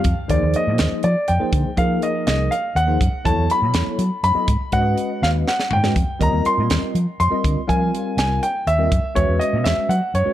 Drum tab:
HH |x-x-x-x-x-x-|x-x-x-x-x-x-|x-x-x-x-x-x-|x-x-x-------|
SD |------o-----|------o-----|------o-----|------o-oo-o|
FT |------------|------------|------------|----------o-|
BD |o-o---------|o-o---------|o-o---------|o-o---------|

HH |x-x-x-x-x-x-|x-x-x-x-x-x-|x-x-x-x-x-x-|
SD |------o-----|------o-----|------o-----|
FT |------------|------------|------------|
BD |o-o---------|o-o---------|o-o---------|